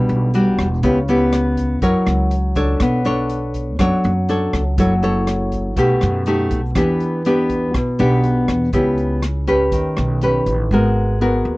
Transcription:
Already playing: B2 G3 D4 F#4
0.09 B1, closed hi-hat
0.34 G3 D4 F#4, closed hi-hat
0.58 E1, kick, cross-stick, closed hi-hat
0.83 C#2 C#3 B3 E4 G4, kick, closed hi-hat
1.08 B3 E4 G4, closed hi-hat
1.33 cross-stick, closed hi-hat
1.57 kick, closed hi-hat
1.82 F#2 F#3 E4 A#4 C#5, kick, closed hi-hat
2.07 C#2, cross-stick, closed hi-hat
2.31 closed hi-hat
2.55 C#2 D4 A4 C#5, kick, closed hi-hat
2.80 B1 B3, kick, cross-stick, closed hi-hat
3.05 D4 A4 C#5, closed hi-hat
3.30 closed hi-hat
3.54 kick, closed hi-hat
3.79 F#2 F#3 D4 A4 C#5, kick, cross-stick, closed hi-hat
4.04 F#2, closed hi-hat
4.29 D4 A4 C#5, closed hi-hat
4.53 C#2, kick, cross-stick, closed hi-hat
4.78 F#1 F#3 E4 A4 C#5, kick, closed hi-hat
5.03 E4 A4 C#5, closed hi-hat
5.27 cross-stick, closed hi-hat
5.52 kick, closed hi-hat
5.76 B1 B2 A3 D#4 G4, kick, closed hi-hat
6.01 F#2, cross-stick, closed hi-hat
6.26 A3 D#4 G4, closed hi-hat
6.51 B1, kick, closed hi-hat
6.75 E2 E3 B3 D4 G4, kick, cross-stick, closed hi-hat
7.00 closed hi-hat
7.25 B3 D4 G4, closed hi-hat
7.49 kick, closed hi-hat
7.74 B1 B2, kick, cross-stick, closed hi-hat
7.99 B1 B3 D4 G4, closed hi-hat
8.24 closed hi-hat
8.48 E2, kick, cross-stick, closed hi-hat
8.73 C#2 C#3 B3 E4 G4, kick, closed hi-hat
8.98 closed hi-hat
9.22 cross-stick, closed hi-hat
9.47 C#4 G4 B4, kick, closed hi-hat
9.72 D#2 D#3, kick, closed hi-hat
9.97 B1, cross-stick, closed hi-hat
10.21 C#4 G4 B4, closed hi-hat
10.46 A1, kick, closed hi-hat
10.71 G#1 G#3 B3 F#4 A#4
11.21 B3 F#4 A#4
11.45 D#2

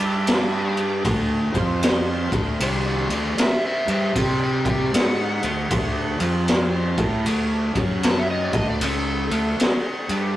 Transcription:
Already playing: G2 G3 D4 G4 D5 E5
0.27 snare, ride
0.77 ride
1.04 D2 D3 A3 D4, kick, ride
1.52 F2 F3 C4 F4 C5, kick, ride
1.83 snare, ride
2.31 D2 D3 A3 D4 C5 F#5, kick, ride
2.59 C2 C3 G3 C4 F#4 D5, ride
2.88 F#4 D5
3.09 D2 D3 A3 D4, ride
3.13 F#4 D5
3.36 C5 E5, muted distorted electric guitar stroke, muted fingered electric bass stroke, snare, ride
3.66 C5 E5
3.86 G2 G3 D4 G4, ride
3.91 C5 E5
4.15 C3 C4 G4 C5 D5 G5, kick, ride
4.43 D5 G5
4.65 D5, kick, ride
4.70 G5
4.92 G#2 D3 G#3 D#4 F#4 G#4 C5 F#5, snare, ride
5.42 D2 D3 A3, ride
5.70 D2 D3 A3 D4, kick, ride
6.20 F2 F3 C4 F4 C5, ride
6.48 snare, ride
6.97 A2 A3 E4 A4, kick, ride
7.25 D2 D3 A3 D4, ride
7.75 F#2 F#3 C#4 F#4 C#5, kick, ride
8.03 A5, snare, ride
8.19 E5
8.30 D#5
8.44 D5
8.53 D2 D3 A3 D4 C5 D#5 F#5, kick, ride
8.70 D5
8.81 C#2 C#3 G#3 C#4 A4, ride
9.30 D2 D3 A3 D4, ride
9.59 muted fingered electric bass stroke, muted distorted electric guitar stroke, snare, ride
10.09 G2 G3 D4 G4, ride

